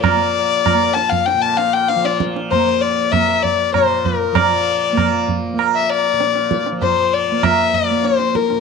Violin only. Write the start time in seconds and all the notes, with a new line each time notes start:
0.02 D5
0.94 A5
1.09 F5
1.26 G5
1.42 A5
1.57 F5
1.73 G5
1.89 F5
2.05 D5
2.51 C5
2.81 D5
3.12 E5
3.43 D5
3.74 C5
4.05 A#4
4.36 D5
5.75 E5
5.90 D5
6.82 C5
7.13 D5
7.43 E5
7.75 D5
8.05 C5
8.36 A#4